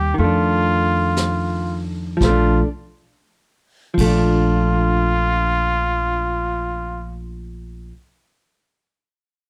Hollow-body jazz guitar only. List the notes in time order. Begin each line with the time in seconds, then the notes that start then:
Already playing: G3 A#3 D#4
0.14 D#3
0.20 A3
0.24 D4
2.17 F3
2.24 A3
2.29 D4
3.94 F3
4.01 A3
4.06 D4